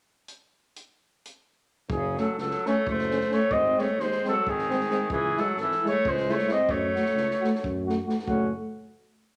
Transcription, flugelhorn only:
1.91 G#4
2.19 A4
2.40 A4
2.67 C#5
2.90 C5
3.34 C#5
3.53 D#5
3.79 C#5
4.01 C5
4.28 A4
4.49 G#4
5.13 G#4
5.40 A4
5.60 A4
5.88 C#5
6.09 C5
6.33 C#5
6.53 D#5
6.71 C#5
8.28 F#5

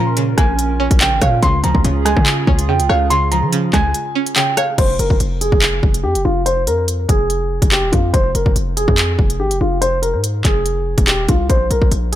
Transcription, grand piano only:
Already playing: A#5
0.38 G#5
1.01 G5
1.22 F5
1.43 C6
1.64 A#5
2.05 G#5
2.69 G5
2.89 F5
3.10 C6
3.31 A#5
3.73 G#5
4.36 G5
4.57 F5
4.79 C5
5.00 A#4
5.41 G#4
6.03 G4
6.25 F4
6.46 C5
6.67 A#4
7.09 G#4
7.72 G4
7.92 F4
8.13 C5
8.35 A#4
8.77 G#4
9.40 G4
9.61 F4
9.81 C5
10.02 A#4
10.45 G#4
11.07 G4
11.29 F4
11.50 C5
11.71 A#4
12.12 G#4

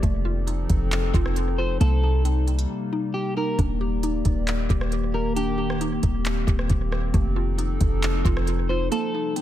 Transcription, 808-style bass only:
0.03 F1
0.70 F1
1.14 F1
1.81 C2
3.59 D#1
4.25 D#1
4.70 D#1
6.03 D#1
6.47 D#1
6.70 D#1
7.14 F1
7.81 F1
8.25 F1

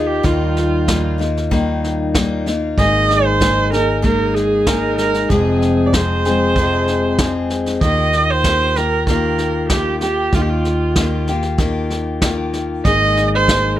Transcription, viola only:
0.07 G4
0.25 F4
2.79 D#5
3.25 C5
3.73 A#4
4.05 A#4
4.34 G#4
4.67 A#4
4.98 A#4
5.32 G#4
5.87 D5
5.94 C5
7.83 D#5
8.31 C5
8.78 A#4
9.09 A#4
9.69 G4
10.02 G4
10.35 F4
10.42 G4
10.50 F4
12.85 D#5
13.35 C5

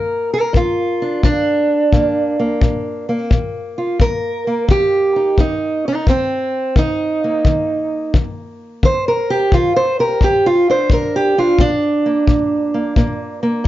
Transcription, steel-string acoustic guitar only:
Already playing: A#2 A#3 A#4
0.34 A#4
0.53 A#2 F4
1.02 D4
1.23 A#2 D4
1.92 A#2 A#3
2.39 A#3
2.61 A#2
3.09 A#3
3.30 A#2
3.78 F4
3.99 A#2 A#4
4.47 A#3
4.68 D#3 G4
5.16 D#4
5.38 D#3 D#4
5.88 D#4
6.07 D#3 C4
6.76 D#3 D#4
7.24 A#3
7.46 D#3
8.14 D#3
8.83 D#3 C5
9.08 A#4
9.30 G4
9.54 D#3 F4
9.76 C5
9.99 G4 A#4
10.22 A#2 G4
10.46 F4
10.70 D4 C5
10.91 A#2 A#4
11.16 G4
11.38 D4 F4
11.59 A#2 D4
12.06 A#3
12.27 A#2
12.74 A#3
12.96 A#2 A#3
13.43 A#3
13.64 A#2

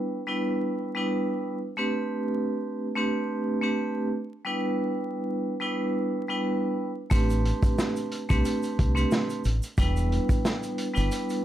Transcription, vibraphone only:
Already playing: G3 B3 D4 E4 B4
0.27 G3 B3 D4 E4 B4
0.95 G3 B3 D4 E4 B4
1.77 A3 C4 D4 G4 B4
2.95 A3 C4 D4 G4 B4
3.62 A3 C4 D4 G4 B4
4.45 G3 B3 D4 E4 B4
5.60 G3 B3 D4 E4 B4
6.29 G3 B3 D4 E4 B4
7.10 A3 C4 D4 G4 B4
8.29 A3 C4 D4 G4 B4
8.95 A3 C4 D4 G4 B4
9.78 G3 B3 D4 E4 B4
10.93 G3 B3 D4 E4 B4

